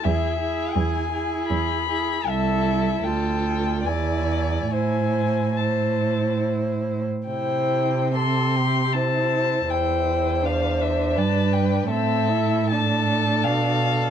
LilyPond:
<<
  \new Staff \with { instrumentName = "Violin" } { \time 3/4 \key a \minor \tempo 4 = 78 e''4 gis''4 b''4 | e''4 g''4 gis''4 | gis''4 a''4 r4 | \key c \major g''4 c'''4 a''4 |
g''4 f''8 e''8 a''8 g''8 | e''4 a''4 f''4 | }
  \new Staff \with { instrumentName = "Violin" } { \time 3/4 \key a \minor gis'8 gis'4 gis'4 gis'8 | a'4 a'4 d''4 | c''4 c''4.~ c''16 r16 | \key c \major c''4 a'8 g'8 c''4 |
c''2 b'4 | a'4 a'2 | }
  \new Staff \with { instrumentName = "Viola" } { \time 3/4 \key a \minor e'8 e'4 e'4 e'8 | e'4 f'4 e'4 | e'4 e'4.~ e'16 r16 | \key c \major e'4 c'4 e'4 |
e'4 d'2 | c'8 e'8 d'2 | }
  \new Staff \with { instrumentName = "Cello" } { \clef bass \time 3/4 \key a \minor e,4 e,4 e,4 | c,4 d,4 e,4 | a,2~ a,8. r16 | \key c \major c2. |
e,2 g,4 | a,2 b,4 | }
>>